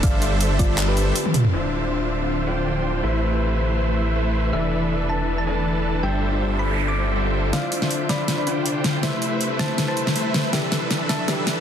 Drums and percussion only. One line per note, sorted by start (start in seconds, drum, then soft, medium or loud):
0.03 kick loud
0.03 closed hi-hat medium
0.22 closed hi-hat medium
0.41 closed hi-hat medium
0.59 kick medium
0.59 closed hi-hat medium
0.78 clap loud
0.78 closed hi-hat medium
0.97 closed hi-hat medium
1.16 closed hi-hat medium
1.26 high tom medium
1.34 closed hi-hat medium
1.34 mid tom medium
1.44 mid tom medium
7.53 snare soft
7.53 closed hi-hat medium
7.72 closed hi-hat medium
7.82 snare soft
7.91 closed hi-hat medium
8.09 snare medium
8.09 closed hi-hat medium
8.28 snare medium
8.28 closed hi-hat medium
8.47 closed hi-hat medium
8.66 closed hi-hat medium
8.84 snare medium
8.84 closed hi-hat medium
9.03 snare medium
9.03 closed hi-hat medium
9.22 closed hi-hat medium
9.41 closed hi-hat medium
9.59 snare medium
9.59 closed hi-hat medium
9.78 snare medium
9.78 closed hi-hat medium
9.97 closed hi-hat medium
10.07 snare medium
10.16 closed hi-hat medium
10.34 snare medium
10.34 closed hi-hat medium
10.53 snare medium
10.53 closed hi-hat medium
10.72 snare medium
10.72 closed hi-hat medium
10.91 snare medium
10.91 closed hi-hat medium
11.09 snare medium
11.09 closed hi-hat medium
11.28 snare medium
11.28 closed hi-hat medium
11.47 snare medium
11.47 closed hi-hat medium